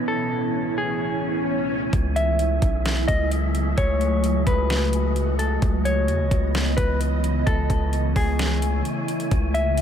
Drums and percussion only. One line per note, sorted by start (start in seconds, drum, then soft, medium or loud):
1.93 kick loud
1.93 closed hi-hat medium
2.16 closed hi-hat medium
2.39 closed hi-hat medium
2.62 kick loud
2.62 closed hi-hat medium
2.85 snare loud
2.85 closed hi-hat medium
3.08 kick loud
3.08 closed hi-hat medium
3.31 closed hi-hat medium
3.55 closed hi-hat medium
3.78 kick loud
3.78 closed hi-hat medium
4.01 closed hi-hat medium
4.24 closed hi-hat medium
4.47 kick loud
4.47 closed hi-hat medium
4.70 snare loud
4.70 closed hi-hat medium
4.93 closed hi-hat medium
5.16 closed hi-hat medium
5.39 closed hi-hat medium
5.62 kick loud
5.62 closed hi-hat medium
5.85 closed hi-hat medium
6.08 closed hi-hat medium
6.31 kick loud
6.31 closed hi-hat medium
6.55 snare loud
6.55 closed hi-hat medium
6.78 kick loud
6.78 closed hi-hat medium
7.01 closed hi-hat medium
7.24 closed hi-hat medium
7.47 kick loud
7.47 closed hi-hat medium
7.70 kick medium
7.70 closed hi-hat medium
7.93 closed hi-hat medium
8.16 kick loud
8.16 open hi-hat medium
8.39 snare loud
8.39 closed hi-hat medium
8.62 closed hi-hat medium
8.85 closed hi-hat medium
9.08 closed hi-hat medium
9.20 closed hi-hat medium
9.31 kick loud
9.31 closed hi-hat medium
9.55 closed hi-hat medium
9.78 closed hi-hat medium